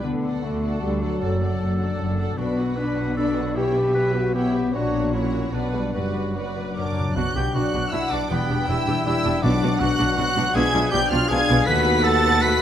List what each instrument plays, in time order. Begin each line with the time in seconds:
Already playing: harp D4 D5
0.03 double bass section D2, harp D3, cello section D3, french horn section B3, clarinet D4
0.23 harp A3, viola section A4, violin section D5 F#5
0.43 double bass section D2, cello section D3, french horn section A3, clarinet F#4, harp F#4
0.62 harp A3, viola section A4, violin section D5 F#5
0.82 double bass section D2, cello section D3, french horn section G3, harp B3
1.01 french horn section F#3, harp A3, viola section A4, violin section D5 F#5
1.21 double bass section F#1, cello section F#2, harp F#2, clarinet A4, viola section A4, violin section D5 F#5
1.40 harp F#3, viola section A4, violin section D5 F#5
1.60 double bass section F#1, cello section F#2, harp D4
1.79 harp F#3, viola section A4, violin section D5 F#5
1.99 double bass section F#1, cello section F#2, harp G3
2.18 harp F#3, viola section A4, violin section D5 F#5
2.37 double bass section B1, timpani B2, harp B2, cello section B2, french horn section B3, viola section D4, clarinet F#4, violin section D5 B5
2.57 harp B3, viola section F#4, violin section B4 F#5
2.77 harp D4, french horn section D4, viola section D4, clarinet B4, violin section D5 B5
2.97 harp B3, viola section F#4, violin section B4 F#5
3.16 harp C#4, viola section D4, french horn section D4, clarinet A4, violin section D5 B5
3.36 harp B3, viola section F#4, violin section B4 F#5
3.56 harp B2, viola section E4, french horn section G4, clarinet G4, violin section C#5 G5
3.75 harp B3, viola section G4, violin section B4 E5
3.94 harp C#4, viola section E4, clarinet B4, violin section C#5 G5
4.14 harp B3, french horn section F#4, viola section G4, violin section B4 E5
4.34 french horn section B3, harp C#4, viola section E4, clarinet G4, violin section C#5 G5
4.54 harp B3, viola section G4, violin section B4 E5
4.74 double bass section A#1, harp A#2, cello section A#2, french horn section D4, clarinet F#4, viola section F#4, violin section C#5 F#5
4.94 harp A#3
5.13 french horn section C#4, harp C#4, clarinet E4, viola section F#4, violin section C#5 F#5
5.34 harp A#3
5.53 double bass section B1, cello section B2, harp B2, french horn section B3, clarinet D4, viola section B4, violin section D5 F#5
5.74 french horn section G3, harp D4 F#4
5.94 double bass section F#1, cello section F#2, harp F#2, timpani F#2, french horn section G3, clarinet F#4, viola section B4, violin section D5 F#5
6.15 harp F#3
6.35 french horn section F#3, harp D4, viola section B4, violin section D5 F#5
6.56 harp F#3
6.76 timpani F#2, harp F#2, clarinet D4, viola section A#4, violin section C#5 F#5 D6, oboe D5, flute section D5
6.84 timpani F#2
6.92 timpani F#2
6.97 timpani F#2, harp C#4 F#4
7.08 timpani F#2
7.15 double bass section B1, cello section B2, harp B2, french horn section F#3 D4, viola section D4 F#4, clarinet F#4, oboe F#5, flute section F#5, violin section F#6
7.27 harp B3
7.36 double bass section B1, cello section B2, viola section D4 F#4, harp D4, clarinet G4, flute section G5, oboe G5, violin section G6
7.46 harp F#4
7.54 double bass section B1, cello section B2, french horn section F#3 D4, viola section D4 F#4, clarinet F#4, harp B4, violin section D5 F#6, oboe F#5, flute section F#5
7.65 harp D5
7.73 double bass section B1, cello section B2, viola section D4 F#4, harp F#5
7.83 harp D5
7.92 double bass section B1, cello section B2, viola section D4 F#4, clarinet E4, harp B4, flute section E5, oboe E5, violin section F#5 E6
8.02 harp F#4
8.11 double bass section B1, cello section B2, clarinet D4, viola section D4 F#4, harp D4, flute section D5, oboe D5, violin section D6
8.21 harp B3
8.30 double bass section E1, cello section E2, harp E3, french horn section G3 D4, clarinet B3, viola section D4 G4, oboe B4, flute section B4, violin section G5 B5
8.40 harp D4
8.49 double bass section E1, cello section E2, viola section D4 G4, harp G4
8.59 harp B4
8.68 double bass section E1, cello section E2, french horn section G3 D4, viola section D4 G4, clarinet E4, harp D5, oboe E5, flute section E5, violin section E6
8.78 harp G5
8.87 double bass section E1, cello section E2, viola section D4 G4, harp B5
8.96 harp G5
9.05 double bass section E1, cello section E2, french horn section G3 D4, viola section D4 G4, clarinet E4, harp D5, oboe E5, flute section E5, violin section E6
9.14 harp B4
9.24 double bass section E1, cello section E2, viola section D4 G4, harp G4
9.34 harp D4
9.42 double bass section B1, harp B2, timpani B2, cello section B2, french horn section F#3 D4, clarinet D4, viola section D4 F#4, oboe D5, flute section D5, violin section F#5 D6
9.52 harp B3
9.62 double bass section B1, cello section B2, harp D4, viola section D4 F#4
9.71 harp F#4
9.79 double bass section B1, cello section B2, french horn section F#3 D4, viola section D4 F#4, clarinet F#4, harp B4, oboe F#5, flute section F#5, violin section F#6
9.90 harp D5
9.99 double bass section B1, cello section B2, viola section D4 F#4, harp F#5
10.08 harp D5
10.16 double bass section B1, cello section B2, french horn section F#3 D4, viola section D4 F#4, clarinet F#4, harp B4, oboe F#5, flute section F#5, violin section F#6
10.27 harp F#4
10.35 double bass section B1, cello section B2, viola section D4 F#4, harp D4
10.46 harp B3
10.53 double bass section B1, cello section B2, harp B2, french horn section F3 D4, viola section D4 F4, clarinet G#4, violin section E5 G#6, flute section G#5, oboe G#5
10.65 harp B3
10.73 double bass section B1, cello section B2, viola section D4 F4, harp D4
10.83 harp F4
10.92 double bass section B1, cello section B2, viola section D4 F4, clarinet G4, harp B4, violin section D5 G6, flute section G5, oboe G5
11.01 harp D5
11.10 double bass section B1, cello section B2, viola section D4 F4, clarinet F4, oboe F5, flute section F5, harp F5, violin section F6
11.20 harp D5
11.28 double bass section B1, cello section B2, french horn section F3 D4, viola section D4 F4, clarinet G#4, harp B4, violin section F5 G#6, oboe G#5, flute section G#5
11.40 harp F4
11.48 double bass section B1, cello section B2, french horn section G3, viola section D4 F4, harp D4
11.58 harp B3
11.67 cello section D#2, double bass section D#2, harp D#3, viola section A3 A4, french horn section A3 F#4, clarinet B4, violin section F#5 B6, oboe B5, flute section B5
11.77 harp B3
11.86 viola section B3 B4, harp F#4
11.95 harp A4
12.04 viola section A3 A4, french horn section A3 F#4, clarinet A4, harp B4, flute section A5, oboe A5, violin section A6
12.14 harp F#5
12.24 viola section B3 B4, harp A5
12.33 harp F#5
12.42 viola section A3 A4, french horn section A3 F#4, clarinet B4, harp B4, oboe B5, flute section B5, violin section B6
12.52 harp A4